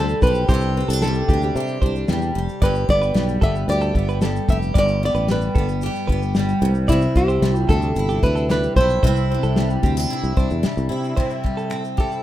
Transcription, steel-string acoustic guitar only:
0, 0, Header, 1, 2, 480
1, 0, Start_track
1, 0, Key_signature, 0, "major"
1, 0, Tempo, 534283
1, 438, Time_signature, 4, 2, 24, 8
1, 10987, End_track
2, 0, Start_track
2, 0, Title_t, "Steel-string acoustic guitar"
2, 0, Program_c, 0, 25
2, 0, Note_on_c, 0, 48, 85
2, 0, Note_on_c, 0, 55, 62
2, 0, Note_on_c, 0, 62, 61
2, 0, Note_on_c, 0, 67, 68
2, 210, Note_off_c, 0, 67, 0
2, 213, Note_on_c, 0, 67, 63
2, 439, Note_off_c, 0, 48, 0
2, 454, Note_on_c, 0, 48, 79
2, 458, Note_off_c, 0, 67, 0
2, 461, Note_on_c, 0, 67, 68
2, 690, Note_off_c, 0, 62, 0
2, 693, Note_on_c, 0, 60, 55
2, 808, Note_off_c, 0, 60, 0
2, 808, Note_on_c, 0, 62, 50
2, 933, Note_off_c, 0, 55, 0
2, 936, Note_on_c, 0, 55, 59
2, 1159, Note_off_c, 0, 62, 0
2, 1170, Note_on_c, 0, 62, 57
2, 1407, Note_off_c, 0, 67, 0
2, 1410, Note_on_c, 0, 67, 62
2, 1636, Note_off_c, 0, 62, 0
2, 1640, Note_on_c, 0, 62, 58
2, 1876, Note_off_c, 0, 55, 0
2, 1880, Note_on_c, 0, 55, 58
2, 2110, Note_off_c, 0, 67, 0
2, 2113, Note_on_c, 0, 67, 65
2, 2352, Note_on_c, 0, 43, 81
2, 2353, Note_off_c, 0, 67, 0
2, 2356, Note_on_c, 0, 67, 67
2, 2362, Note_off_c, 0, 48, 0
2, 2590, Note_off_c, 0, 62, 0
2, 2593, Note_on_c, 0, 59, 54
2, 2821, Note_off_c, 0, 55, 0
2, 2825, Note_on_c, 0, 55, 57
2, 3063, Note_off_c, 0, 59, 0
2, 3073, Note_on_c, 0, 59, 53
2, 3310, Note_off_c, 0, 67, 0
2, 3313, Note_on_c, 0, 67, 63
2, 3544, Note_off_c, 0, 59, 0
2, 3555, Note_on_c, 0, 59, 58
2, 3788, Note_off_c, 0, 55, 0
2, 3792, Note_on_c, 0, 55, 59
2, 4032, Note_off_c, 0, 67, 0
2, 4035, Note_on_c, 0, 67, 68
2, 4262, Note_off_c, 0, 43, 0
2, 4271, Note_on_c, 0, 43, 79
2, 4277, Note_off_c, 0, 67, 0
2, 4281, Note_on_c, 0, 67, 61
2, 4508, Note_off_c, 0, 59, 0
2, 4518, Note_on_c, 0, 59, 57
2, 4744, Note_off_c, 0, 55, 0
2, 4748, Note_on_c, 0, 55, 59
2, 4980, Note_off_c, 0, 59, 0
2, 4990, Note_on_c, 0, 59, 55
2, 5235, Note_off_c, 0, 67, 0
2, 5238, Note_on_c, 0, 67, 63
2, 5463, Note_off_c, 0, 59, 0
2, 5474, Note_on_c, 0, 59, 61
2, 5714, Note_off_c, 0, 55, 0
2, 5718, Note_on_c, 0, 55, 63
2, 5948, Note_on_c, 0, 48, 77
2, 6000, Note_off_c, 0, 43, 0
2, 6001, Note_off_c, 0, 59, 0
2, 6181, Note_off_c, 0, 48, 0
2, 6190, Note_on_c, 0, 48, 84
2, 6193, Note_off_c, 0, 67, 0
2, 6197, Note_on_c, 0, 64, 60
2, 6428, Note_on_c, 0, 62, 54
2, 6667, Note_off_c, 0, 55, 0
2, 6671, Note_on_c, 0, 55, 62
2, 6901, Note_off_c, 0, 62, 0
2, 6912, Note_on_c, 0, 62, 60
2, 7150, Note_off_c, 0, 64, 0
2, 7154, Note_on_c, 0, 64, 65
2, 7383, Note_off_c, 0, 62, 0
2, 7394, Note_on_c, 0, 62, 58
2, 7636, Note_off_c, 0, 55, 0
2, 7639, Note_on_c, 0, 55, 58
2, 7880, Note_off_c, 0, 64, 0
2, 7884, Note_on_c, 0, 64, 66
2, 8110, Note_off_c, 0, 48, 0
2, 8121, Note_on_c, 0, 48, 82
2, 8125, Note_off_c, 0, 64, 0
2, 8129, Note_on_c, 0, 64, 67
2, 8354, Note_off_c, 0, 62, 0
2, 8369, Note_on_c, 0, 62, 57
2, 8598, Note_off_c, 0, 55, 0
2, 8602, Note_on_c, 0, 55, 60
2, 8829, Note_off_c, 0, 62, 0
2, 8832, Note_on_c, 0, 60, 57
2, 8956, Note_off_c, 0, 60, 0
2, 8956, Note_on_c, 0, 62, 50
2, 9073, Note_off_c, 0, 64, 0
2, 9077, Note_on_c, 0, 64, 66
2, 9303, Note_off_c, 0, 62, 0
2, 9314, Note_on_c, 0, 62, 58
2, 9546, Note_off_c, 0, 55, 0
2, 9550, Note_on_c, 0, 55, 58
2, 9780, Note_off_c, 0, 64, 0
2, 9784, Note_on_c, 0, 64, 62
2, 10026, Note_off_c, 0, 48, 0
2, 10037, Note_on_c, 0, 48, 73
2, 10085, Note_off_c, 0, 62, 0
2, 10271, Note_off_c, 0, 55, 0
2, 10274, Note_on_c, 0, 55, 48
2, 10510, Note_on_c, 0, 60, 53
2, 10751, Note_off_c, 0, 64, 0
2, 10755, Note_on_c, 0, 64, 56
2, 10981, Note_off_c, 0, 60, 0
2, 10987, Note_off_c, 0, 48, 0
2, 10987, Note_off_c, 0, 55, 0
2, 10987, Note_off_c, 0, 64, 0
2, 10987, End_track
0, 0, End_of_file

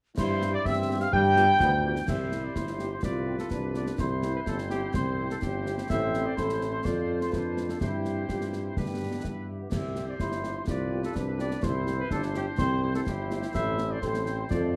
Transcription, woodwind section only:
0, 0, Header, 1, 2, 480
1, 0, Start_track
1, 0, Key_signature, 0, "major"
1, 0, Tempo, 477707
1, 173, Time_signature, 2, 2, 24, 8
1, 14832, End_track
2, 0, Start_track
2, 0, Title_t, "Woodwind section"
2, 0, Program_c, 0, 71
2, 179, Note_on_c, 0, 72, 81
2, 510, Note_off_c, 0, 72, 0
2, 538, Note_on_c, 0, 74, 77
2, 646, Note_off_c, 0, 74, 0
2, 664, Note_on_c, 0, 76, 81
2, 992, Note_off_c, 0, 76, 0
2, 1022, Note_on_c, 0, 77, 88
2, 1136, Note_off_c, 0, 77, 0
2, 1137, Note_on_c, 0, 79, 124
2, 2051, Note_off_c, 0, 79, 0
2, 2090, Note_on_c, 0, 72, 65
2, 2094, Note_on_c, 0, 67, 52
2, 3007, Note_off_c, 0, 72, 0
2, 3009, Note_off_c, 0, 67, 0
2, 3048, Note_on_c, 0, 71, 53
2, 3049, Note_on_c, 0, 65, 56
2, 3966, Note_off_c, 0, 71, 0
2, 4003, Note_on_c, 0, 64, 64
2, 4005, Note_on_c, 0, 72, 61
2, 4007, Note_off_c, 0, 65, 0
2, 5882, Note_off_c, 0, 64, 0
2, 5914, Note_off_c, 0, 72, 0
2, 5926, Note_on_c, 0, 64, 65
2, 5926, Note_on_c, 0, 72, 70
2, 6844, Note_off_c, 0, 64, 0
2, 6882, Note_on_c, 0, 65, 63
2, 7804, Note_off_c, 0, 72, 0
2, 7842, Note_off_c, 0, 65, 0
2, 7846, Note_on_c, 0, 64, 51
2, 7849, Note_on_c, 0, 72, 50
2, 8766, Note_off_c, 0, 72, 0
2, 8805, Note_off_c, 0, 64, 0
2, 8807, Note_on_c, 0, 71, 45
2, 8810, Note_on_c, 0, 67, 51
2, 9525, Note_off_c, 0, 71, 0
2, 9760, Note_on_c, 0, 72, 50
2, 10682, Note_off_c, 0, 72, 0
2, 10687, Note_off_c, 0, 67, 0
2, 10729, Note_on_c, 0, 67, 57
2, 10730, Note_on_c, 0, 71, 50
2, 11647, Note_off_c, 0, 67, 0
2, 11684, Note_on_c, 0, 64, 65
2, 11686, Note_on_c, 0, 72, 66
2, 11687, Note_off_c, 0, 71, 0
2, 13567, Note_off_c, 0, 72, 0
2, 13601, Note_off_c, 0, 64, 0
2, 13611, Note_on_c, 0, 72, 69
2, 13614, Note_on_c, 0, 64, 62
2, 14531, Note_off_c, 0, 64, 0
2, 14571, Note_on_c, 0, 65, 58
2, 14832, Note_off_c, 0, 65, 0
2, 14832, Note_off_c, 0, 72, 0
2, 14832, End_track
0, 0, End_of_file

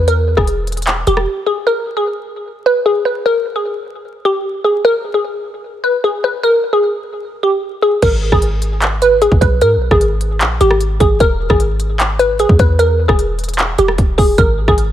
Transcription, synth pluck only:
0, 0, Header, 1, 2, 480
1, 0, Start_track
1, 0, Tempo, 397351
1, 93, Time_signature, 4, 2, 24, 8
1, 18027, End_track
2, 0, Start_track
2, 0, Title_t, "Synth pluck"
2, 0, Program_c, 0, 84
2, 94, Note_on_c, 0, 70, 98
2, 432, Note_off_c, 0, 70, 0
2, 447, Note_on_c, 0, 68, 78
2, 1014, Note_off_c, 0, 68, 0
2, 1295, Note_on_c, 0, 67, 83
2, 1745, Note_off_c, 0, 67, 0
2, 1769, Note_on_c, 0, 68, 80
2, 1990, Note_off_c, 0, 68, 0
2, 2013, Note_on_c, 0, 70, 95
2, 2351, Note_off_c, 0, 70, 0
2, 2376, Note_on_c, 0, 68, 80
2, 3166, Note_off_c, 0, 68, 0
2, 3214, Note_on_c, 0, 71, 91
2, 3433, Note_off_c, 0, 71, 0
2, 3452, Note_on_c, 0, 68, 80
2, 3671, Note_off_c, 0, 68, 0
2, 3688, Note_on_c, 0, 71, 78
2, 3910, Note_off_c, 0, 71, 0
2, 3934, Note_on_c, 0, 70, 99
2, 4272, Note_off_c, 0, 70, 0
2, 4296, Note_on_c, 0, 68, 74
2, 4859, Note_off_c, 0, 68, 0
2, 5135, Note_on_c, 0, 67, 87
2, 5585, Note_off_c, 0, 67, 0
2, 5611, Note_on_c, 0, 68, 76
2, 5831, Note_off_c, 0, 68, 0
2, 5855, Note_on_c, 0, 70, 109
2, 6192, Note_off_c, 0, 70, 0
2, 6212, Note_on_c, 0, 68, 73
2, 7004, Note_off_c, 0, 68, 0
2, 7050, Note_on_c, 0, 71, 87
2, 7271, Note_off_c, 0, 71, 0
2, 7296, Note_on_c, 0, 68, 85
2, 7514, Note_off_c, 0, 68, 0
2, 7538, Note_on_c, 0, 71, 84
2, 7755, Note_off_c, 0, 71, 0
2, 7773, Note_on_c, 0, 70, 99
2, 8111, Note_off_c, 0, 70, 0
2, 8128, Note_on_c, 0, 68, 75
2, 8694, Note_off_c, 0, 68, 0
2, 8977, Note_on_c, 0, 67, 79
2, 9426, Note_off_c, 0, 67, 0
2, 9451, Note_on_c, 0, 68, 81
2, 9671, Note_off_c, 0, 68, 0
2, 9695, Note_on_c, 0, 70, 96
2, 10032, Note_off_c, 0, 70, 0
2, 10057, Note_on_c, 0, 68, 82
2, 10847, Note_off_c, 0, 68, 0
2, 10894, Note_on_c, 0, 71, 92
2, 11113, Note_off_c, 0, 71, 0
2, 11133, Note_on_c, 0, 68, 83
2, 11352, Note_off_c, 0, 68, 0
2, 11369, Note_on_c, 0, 71, 81
2, 11590, Note_off_c, 0, 71, 0
2, 11616, Note_on_c, 0, 70, 103
2, 11953, Note_off_c, 0, 70, 0
2, 11975, Note_on_c, 0, 68, 73
2, 12538, Note_off_c, 0, 68, 0
2, 12813, Note_on_c, 0, 67, 92
2, 13264, Note_off_c, 0, 67, 0
2, 13291, Note_on_c, 0, 68, 80
2, 13511, Note_off_c, 0, 68, 0
2, 13534, Note_on_c, 0, 70, 113
2, 13872, Note_off_c, 0, 70, 0
2, 13890, Note_on_c, 0, 68, 78
2, 14683, Note_off_c, 0, 68, 0
2, 14730, Note_on_c, 0, 71, 90
2, 14951, Note_off_c, 0, 71, 0
2, 14974, Note_on_c, 0, 68, 85
2, 15193, Note_off_c, 0, 68, 0
2, 15215, Note_on_c, 0, 71, 86
2, 15433, Note_off_c, 0, 71, 0
2, 15450, Note_on_c, 0, 70, 100
2, 15790, Note_off_c, 0, 70, 0
2, 15804, Note_on_c, 0, 68, 77
2, 16372, Note_off_c, 0, 68, 0
2, 16654, Note_on_c, 0, 67, 82
2, 17105, Note_off_c, 0, 67, 0
2, 17128, Note_on_c, 0, 68, 82
2, 17350, Note_off_c, 0, 68, 0
2, 17372, Note_on_c, 0, 70, 96
2, 17711, Note_off_c, 0, 70, 0
2, 17735, Note_on_c, 0, 68, 85
2, 18027, Note_off_c, 0, 68, 0
2, 18027, End_track
0, 0, End_of_file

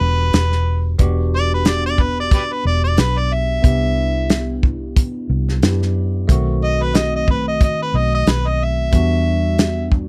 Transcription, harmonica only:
0, 0, Header, 1, 2, 480
1, 0, Start_track
1, 0, Key_signature, 1, "minor"
1, 0, Tempo, 661521
1, 723, Time_signature, 4, 2, 24, 8
1, 7317, End_track
2, 0, Start_track
2, 0, Title_t, "Harmonica"
2, 0, Program_c, 0, 22
2, 0, Note_on_c, 0, 71, 107
2, 707, Note_off_c, 0, 71, 0
2, 984, Note_on_c, 0, 74, 99
2, 1095, Note_off_c, 0, 74, 0
2, 1117, Note_on_c, 0, 71, 77
2, 1224, Note_on_c, 0, 74, 88
2, 1235, Note_off_c, 0, 71, 0
2, 1335, Note_off_c, 0, 74, 0
2, 1351, Note_on_c, 0, 74, 85
2, 1465, Note_on_c, 0, 71, 77
2, 1475, Note_off_c, 0, 74, 0
2, 1575, Note_off_c, 0, 71, 0
2, 1596, Note_on_c, 0, 74, 81
2, 1688, Note_off_c, 0, 74, 0
2, 1701, Note_on_c, 0, 67, 51
2, 1701, Note_on_c, 0, 71, 51
2, 1701, Note_on_c, 0, 74, 73
2, 1750, Note_off_c, 0, 67, 0
2, 1765, Note_off_c, 0, 71, 0
2, 1832, Note_on_c, 0, 71, 75
2, 1843, Note_off_c, 0, 74, 0
2, 1926, Note_off_c, 0, 71, 0
2, 1936, Note_on_c, 0, 74, 89
2, 2051, Note_off_c, 0, 74, 0
2, 2061, Note_on_c, 0, 74, 80
2, 2181, Note_on_c, 0, 71, 88
2, 2191, Note_off_c, 0, 74, 0
2, 2306, Note_on_c, 0, 74, 77
2, 2317, Note_off_c, 0, 71, 0
2, 2417, Note_on_c, 0, 76, 86
2, 2428, Note_off_c, 0, 74, 0
2, 3342, Note_off_c, 0, 76, 0
2, 4821, Note_on_c, 0, 75, 101
2, 4952, Note_on_c, 0, 71, 85
2, 4963, Note_off_c, 0, 75, 0
2, 5057, Note_on_c, 0, 75, 88
2, 5068, Note_off_c, 0, 71, 0
2, 5171, Note_off_c, 0, 75, 0
2, 5195, Note_on_c, 0, 75, 78
2, 5288, Note_off_c, 0, 75, 0
2, 5302, Note_on_c, 0, 71, 73
2, 5414, Note_off_c, 0, 71, 0
2, 5431, Note_on_c, 0, 75, 77
2, 5525, Note_off_c, 0, 75, 0
2, 5542, Note_on_c, 0, 75, 77
2, 5654, Note_off_c, 0, 75, 0
2, 5676, Note_on_c, 0, 71, 75
2, 5782, Note_on_c, 0, 75, 79
2, 5793, Note_off_c, 0, 71, 0
2, 5894, Note_off_c, 0, 75, 0
2, 5912, Note_on_c, 0, 75, 92
2, 6023, Note_on_c, 0, 71, 82
2, 6034, Note_off_c, 0, 75, 0
2, 6150, Note_on_c, 0, 75, 79
2, 6160, Note_off_c, 0, 71, 0
2, 6266, Note_on_c, 0, 76, 79
2, 6277, Note_off_c, 0, 75, 0
2, 7186, Note_off_c, 0, 76, 0
2, 7317, End_track
0, 0, End_of_file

